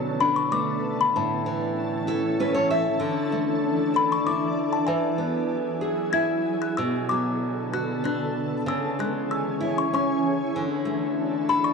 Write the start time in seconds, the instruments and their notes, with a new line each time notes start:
Already playing: nylon-string guitar B2 F#3, ambient pad D3 B3 A4
0.20 nylon-string guitar D4, music box B5
0.36 music box C#6
0.52 nylon-string guitar A3, music box D6
1.01 music box B5
1.14 nylon-string guitar A2, ambient pad E3 C#4, music box A5
1.46 nylon-string guitar E3
2.07 nylon-string guitar E4 A4
2.40 nylon-string guitar C#4 B4
2.54 nylon-string guitar C#5
2.70 nylon-string guitar E5
3.00 nylon-string guitar D3, ambient pad D4
3.32 nylon-string guitar A3
3.94 nylon-string guitar A4, music box B5
4.12 music box C#6
4.26 nylon-string guitar E4, music box D6
4.73 music box A5
4.86 nylon-string guitar E3, ambient pad F#3 E4 G#4, music box G#5
5.18 nylon-string guitar B3
5.81 nylon-string guitar G#4
6.13 nylon-string guitar E4, music box G#6
6.62 music box F#6
6.77 nylon-string guitar B2, ambient pad D3 B3 A4, music box E6
7.09 nylon-string guitar F#3, music box D6
7.73 nylon-string guitar F#4, music box F#6
8.04 nylon-string guitar D4, music box F#6
8.65 nylon-string guitar C#3, ambient pad E3 C#4 G#4, music box E6
8.99 nylon-string guitar G#3, music box F#6
9.31 music box E6
9.60 nylon-string guitar E4
9.78 music box C#6
9.93 nylon-string guitar C#4, music box C#6
10.53 nylon-string guitar D3, ambient pad D4 A4
10.85 nylon-string guitar A3
11.49 nylon-string guitar A4, music box B5
11.64 music box C#6